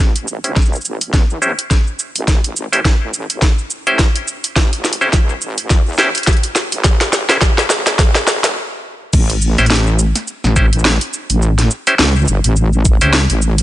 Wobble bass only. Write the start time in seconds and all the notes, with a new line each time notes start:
0.00 A1
0.28 A1
0.44 C#2
0.85 A1
1.14 E2
2.16 A1
2.44 A1
2.56 A1
3.01 A1
3.30 A1
3.87 A1
4.56 A1
4.85 A1
5.01 C#2
5.42 A1
5.71 E2
6.73 A1
7.01 A1
7.13 A1
7.58 A1
7.87 A1
9.13 A1
9.59 A1
10.44 A1
11.30 A1
11.99 C#2
12.28 G1
12.44 A1
13.01 C#2
13.30 A1